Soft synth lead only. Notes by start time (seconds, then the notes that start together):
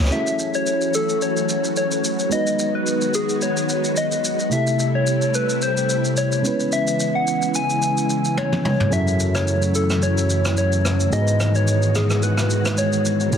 Already playing: C#5
0.12 E5
0.55 C#5
0.95 A4
1.22 C#5
1.77 C#5
2.32 D#5
2.75 B4
3.15 G#4
3.42 C#5
3.97 D#5
4.52 E5
4.95 C#5
5.35 B4
5.63 C5
6.18 C#5
6.73 E5
7.15 F#5
7.55 G#5
8.38 C#5
8.65 C#5
8.93 E5
9.36 C#5
9.75 A4
10.03 C#5
10.58 C#5
11.13 D#5
11.56 C#5
11.96 G#4
12.23 B4
12.78 C#5
13.33 C#5